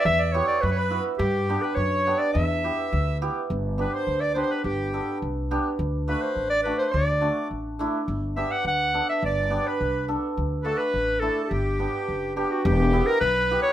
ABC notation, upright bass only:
X:1
M:2/4
L:1/8
Q:1/4=105
K:none
V:1 name="Upright bass" clef=bass
E,,2 ^F,,2 | G,,2 ^F,,2 | E,,2 D,,2 | G,,,2 D,,2 |
G,,,2 C,,2 | D,,2 A,,,2 | D,,2 A,,,2 | G,,,2 D,,2 |
G,,,2 C,,2 | D,,2 A,,,2 | G,,,2 ^F,,,2 | E,,,2 B,,,2 |]